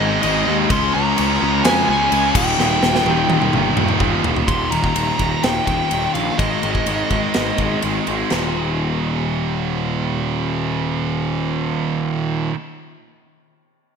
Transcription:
Already playing: G#2 D#3 G#3
0.00 G#1 D#5
0.22 G#1 G#2 D#3 G#3 D#5, crash
0.47 D#2 G#2 D#3 G#3
0.70 C#2 C#3 G#3 C#4 C6, kick, crash
0.94 C#2 A#5
1.17 C#2 C#3 G#3 C#4, crash
1.41 C#2 C#3 G#3 C#4
1.64 F2 C#3 G#3 C#4 G#5, snare, crash
1.89 C#2 G#5
2.11 C#2 C#3 G#3 C#4, crash
2.35 D#1 D#2 A#2 D#3 G5, kick, crash
2.59 D#1 D#2 A#2 D#3, snare
2.81 D#1, snare
2.95 snare
3.05 D#1 D#2 A#2 D#3, high tom
3.29 D#1 D#2 A#2 D#3, high tom
3.42 mid tom
3.53 G1 D#2 A#2 D#3, mid tom
3.76 D#1 D#2 A#2 D#3, mid tom
3.88 mid tom
4.00 D#1 D#2 A#2 D#3, kick, mid tom
4.23 D#1 D#2 A#2 D#3, floor tom
4.36 floor tom
4.48 D#1 D#2 A#2 D#3 C6, kick, ride
4.71 D#1 D#2 A#2 D#3 A#5, ride
4.84 kick
4.95 D#1 D#2 A#2 D#3, ride
5.19 D#1 D#2 A#2 D#3, kick, ride
5.43 D#1 D#2 A#2 D#3 G5, snare, ride
5.66 D#1 D#2 A#2 D#3 G5, kick, ride
5.91 D#1 D#2 A#2 D#3, ride
6.14 A#1 D#2 A#2 D#3 F5, ride
6.38 G#1 G#2 D#3 G#3 D#5, kick, ride
6.62 G#1 G#2 D#3 G#3, ride
6.75 kick
6.86 G#1 G#2 D#3 G#3, ride
7.10 G#1 G#2 D#3 G#3, kick, ride
7.34 G#1 G#2 D#3 G#3, snare, ride
7.58 G#1 G#2 D#3 G#3, kick, ride
7.82 G#1 G#2 D#3 G#3, ride
8.06 G#1 G#2 D#3 G#3, ride
8.30 D#1 D#2 A#2 D#3, snare, china

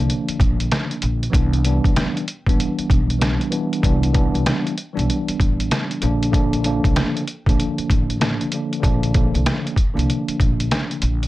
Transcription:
Already playing: D3 F3 A#3 D4
0.10 closed hi-hat
0.28 muted upright bass stroke, closed hi-hat
0.40 A#1, kick, closed hi-hat
0.60 closed hi-hat
0.72 cross-stick, snare, closed hi-hat
0.91 closed hi-hat
1.02 A#1, closed hi-hat
1.23 closed hi-hat
1.30 C2 E3 G3 B3 D4, kick
1.34 closed hi-hat
1.53 closed hi-hat
1.64 E3 G3 B3 D4, closed hi-hat
1.84 kick, closed hi-hat
1.96 cross-stick, snare, closed hi-hat
2.17 closed hi-hat
2.28 closed hi-hat
2.46 A1 E3 G3 B3 D4, kick, closed hi-hat
2.60 closed hi-hat
2.78 muted upright bass stroke, closed hi-hat
2.90 B1, kick, closed hi-hat
3.10 closed hi-hat
3.19 E3 G3 B3 D4, cross-stick, snare, closed hi-hat
3.41 closed hi-hat
3.51 E3 G3 B3 D4, closed hi-hat
3.73 closed hi-hat
3.82 C2 E3 G3 B3 D4, kick, closed hi-hat
4.03 closed hi-hat
4.13 E3 G3 B3 D4, kick, closed hi-hat
4.34 C2, closed hi-hat
4.46 cross-stick, snare, closed hi-hat
4.67 closed hi-hat
4.78 closed hi-hat
4.93 B1 E3 G3 B3 D4
4.99 closed hi-hat
5.10 closed hi-hat
5.28 muted upright bass stroke, closed hi-hat
5.40 A1, kick, closed hi-hat
5.60 closed hi-hat
5.71 cross-stick, snare, closed hi-hat
5.91 closed hi-hat
6.01 A#1 D3 F3 A#3 D4, closed hi-hat
6.23 closed hi-hat
6.31 D3 F3 A#3 D4, kick, closed hi-hat
6.53 closed hi-hat
6.63 D3 F3 A#3 D4, closed hi-hat
6.84 C2, kick, closed hi-hat
6.96 cross-stick, snare, closed hi-hat
7.17 closed hi-hat
7.28 closed hi-hat
7.46 A#1 D3 F3 A#3 D4, kick, closed hi-hat
7.60 closed hi-hat
7.78 muted upright bass stroke, closed hi-hat
7.90 A1, kick, closed hi-hat
8.10 closed hi-hat
8.19 D3 F3 A#3 D4, cross-stick, snare, closed hi-hat
8.41 closed hi-hat
8.52 D3 F3 A#3 D4, closed hi-hat
8.73 closed hi-hat
8.80 A#1 D3 F3 A#3 D4, kick, closed hi-hat
9.03 closed hi-hat
9.14 D3 F3 A#3 D4, kick, closed hi-hat
9.34 C2, closed hi-hat
9.46 cross-stick, snare, closed hi-hat
9.67 closed hi-hat
9.76 kick, closed hi-hat
9.93 C2 D3 F3 A#3 D4
9.99 closed hi-hat
10.10 closed hi-hat
10.28 muted upright bass stroke, closed hi-hat
10.40 A#1, kick, closed hi-hat
10.60 closed hi-hat
10.71 cross-stick, snare, closed hi-hat
10.91 closed hi-hat
11.02 A#1, closed hi-hat
11.23 closed hi-hat

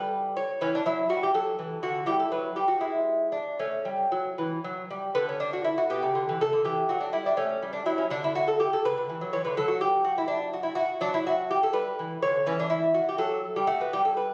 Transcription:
Already playing: G3 B4
0.36 C#5
0.61 E3 C#4
0.75 D4
0.86 F#3 E4
1.09 G3 F#4
1.23 G4
1.34 F#3 A4
1.59 E3
1.83 D3 F#4
2.06 G3 E4 G4
2.20 A4
2.31 F#3 B4
2.56 G3 G4
2.68 F#4
2.80 G#3 E4
3.32 D4
3.59 A3 C#4
3.85 G3
4.12 F#3
4.38 E3
4.64 F#3
4.91 G3
5.15 D3 B3
5.29 C#4
5.40 D4
5.53 F#4
5.64 E4
5.78 F#4
5.90 B2 G4
6.02 C#3
6.15 D3
6.29 E3
6.41 C#3 A4
6.53 D3
6.64 E3 G4
6.89 F#3 F#4
7.01 D4
7.13 G3 E4
7.26 D4
7.37 A3 C#4
7.62 G3
7.73 D4
7.86 F#3 E4
7.98 C#4
8.10 D3 D4
8.24 E4
8.35 F#4
8.48 A4
8.60 G4
8.73 A4
8.85 C#3 B4
8.97 D3
9.09 E3
9.21 F#3
9.33 E3 C#5
9.45 D3 B4
9.57 F#3 A4
9.68 F#4
9.81 G4
10.04 F#4
10.18 E4
10.28 D4
10.53 F#4
10.63 E4
10.75 F#4
11.01 F#3 D4
11.14 E4
11.27 F#4
11.51 G4
11.63 A4
11.73 G3 B4
11.99 E3
12.22 D3 C#5
12.46 E3 C#4
12.60 D4
12.70 E4
12.94 F#4
13.09 G4
13.18 F#3 A4
13.56 G3 G4
13.67 A3 F#4
13.81 B3
13.93 G3 G4
14.05 A4
14.17 B4

